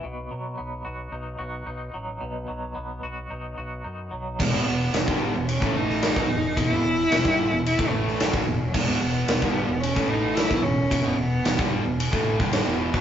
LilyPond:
<<
  \new Staff \with { instrumentName = "Cello" } { \time 4/4 \key b \mixolydian \tempo 4 = 110 r1 | r1 | gis8 b4. cis'8 dis'4. | e'2 e'8 a4 r16. fis32 |
gis8 b4. cis'8 dis'8 e'8 cis'8~ | cis'8 b4 r2 r8 | }
  \new Staff \with { instrumentName = "Clean electric guitar" } { \time 4/4 \key b \mixolydian b,8 fis8 b8 fis'8 dis'8 fis'8 dis'8 fis8 | b,8 fis8 b8 fis'8 dis'8 fis'8 dis'8 fis8 | r1 | r1 |
r1 | r1 | }
  \new Staff \with { instrumentName = "Distorted electric guitar" } { \clef bass \time 4/4 \key b \mixolydian r1 | r1 | <e, b,>16 <e, b,>16 <e, b,>8 <e, b,>16 <g, d g>8 <e, b,>8 <a, e a>4 <b, fis>16 <e, b,>8 | <e, b,>16 <e, b,>16 <e, b,>8 <e, b,>16 <g, d g>8 <e, b,>8 <a, e a>4 <b, fis>16 <e, b,>8 |
<e, b,>16 <e, b,>16 <e, b,>8 <e, b,>16 <g, d g>8 <e, b,>8 <a, e a>4 <b, fis>16 <e, b,>8 | <e, b,>16 <e, b,>16 <e, b,>8 <e, b,>16 <g, d g>8 <e, b,>8 <a, e a>8 <g, d g>8 <e, b, e>8 <b, fis>16 | }
  \new Staff \with { instrumentName = "Overdriven electric guitar" } { \clef bass \time 4/4 \key b \mixolydian r1 | r1 | <e, b,>16 <e, b,>16 <e, b,>8 <e, b,>16 <g, d g>8 <e, b,>8 <a, e a>4 <b, fis>16 <e, b,>8 | <e, b,>16 <e, b,>16 <e, b,>8 <e, b,>16 <g, d g>8 <e, b,>8 <a, e a>4 <b, fis>16 <e, b,>8 |
<e, b,>16 <e, b,>16 <e, b,>8 <e, b,>16 <g, d g>8 <e, b,>8 <a, e a>4 <b, fis>16 <e, b,>8 | <e, b,>16 <e, b,>16 <e, b,>8 <e, b,>16 <g, d g>8 <e, b,>8 <a, e a>8 <g, d g>8 <e, b, e>8 <b, fis>16 | }
  \new Staff \with { instrumentName = "Fingered electric bass" } { \clef bass \time 4/4 \key b \mixolydian b,,8 b,8 b,,8 b,,8 b,,8 b,,8 b,,8 a,,8 | b,,8 b,,8 b,,8 b,,8 b,,8 b,,8 fis,8 b,,8 | e,,16 e,,16 e,,8 e,,16 g,,8 e,,8 a,,4 b,,16 e,,8 | e,,16 e,,16 e,,8 e,,16 g,,8 e,,8 a,,4 b,,16 e,,8 |
e,,16 e,,16 e,,8 e,,16 g,,8 e,,8 a,,4 b,,16 e,,8 | e,,16 e,,16 e,,8 e,,16 g,,8 e,,8 a,,8 g,,8 e,,8 b,,16 | }
  \new DrumStaff \with { instrumentName = "Drums" } \drummode { \time 4/4 r4 r4 r4 r4 | r4 r4 r4 r4 | <cymc bd>4 <rb sn>16 bd8. rb16 bd8 sn16 <rb sn>16 bd8. | <bd rb>4 <rb sn>16 bd8. rb16 bd8 sn16 <rb sn>16 bd8. |
<cymc bd>4 <rb sn>16 bd8. rb16 bd8. <rb sn>16 bd8. | <bd rb>4 <rb sn>16 bd8. rb16 bd8 <bd sn>16 <rb sn>8. bd16 | }
>>